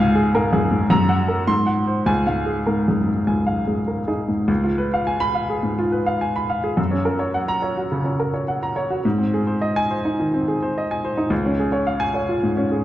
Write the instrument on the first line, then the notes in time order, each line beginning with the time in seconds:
grand piano
Already playing: C#2 G#2 F5 G#5
0.15 G#4
0.35 G#2 A#4
0.53 F#2 G#4
0.71 G#2
0.90 F#2 A#5
1.09 F#5
1.28 A#4
1.47 G#2 C6
1.66 F#5
1.87 C5
2.06 C#2 G#5
2.27 G#2 F5
2.46 G#4
2.67 G#2 A#4
2.88 F#2 G#4
3.07 G#2
3.27 C#2 G#5
3.47 F5
3.67 G#2 G#4
3.88 A#4
4.08 D#4 G#4
4.28 G#2
4.48 C#2
4.64 F4
4.78 B4
4.94 F5
5.07 G#5
5.20 B5
5.35 F5
5.50 G#4
5.63 G#2
5.79 F4
5.92 B4
6.06 F5
6.21 G#5
6.36 B5
6.50 F5
6.64 G#4
6.77 F#2
6.91 C#4
7.05 A#4
7.19 C#5
7.34 F#5
7.48 A#5
7.62 C#5
7.77 F#4
7.92 C#3
8.04 C#4
8.20 A#4
8.34 C#5
8.48 F#5
8.63 A#5
8.76 C#5
8.90 F#4
9.05 G#2
9.18 C4
9.34 G#4
9.47 C5
9.62 D#5
9.76 G#5
9.91 C5
10.05 D#4
10.20 D#3
10.34 C4
10.48 G#4
10.62 C5
10.78 D#5
10.91 G#5
11.05 C5
11.17 D#4
11.30 C#2
11.45 C#4
11.60 G#4
11.72 C#5
11.87 F5
12.00 G#5
12.14 C#5
12.29 F4
12.43 G#2
12.57 C#4
12.72 G#4